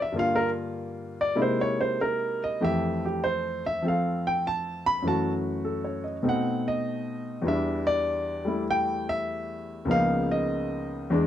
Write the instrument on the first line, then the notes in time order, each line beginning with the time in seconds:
grand piano
Already playing: E2 E3 G3 B3 D4
0.02 E5
0.12 G2 D3 A#3
0.17 F4 F5
0.36 A#4
1.21 D5
1.35 C3 G#3 A#3 D#4 E4
1.42 C5
1.61 C#5
1.81 C5
2.01 A#4
2.44 D#5
2.61 F2 E3 A3 G4 E5
3.05 G4
3.24 C5
3.66 E5
3.82 F3 C4 A4
3.88 F5
4.27 G5
4.47 A5
4.86 B5
5.02 F#2 E3 A3
5.07 F#4 A5
5.65 A4
5.84 C#5
6.04 D#5
6.23 B2 A3 C4 D#4
6.29 F#5
6.68 D#5
7.42 E2 E3 G3
7.47 D4 E5
7.87 D5
8.45 G3 A3 E4
8.71 G5
9.09 E5
9.85 C#2 C#3 F3 A#3
9.90 B3 D#4 F5
10.31 D#5
11.10 E2 E3 G#3 D4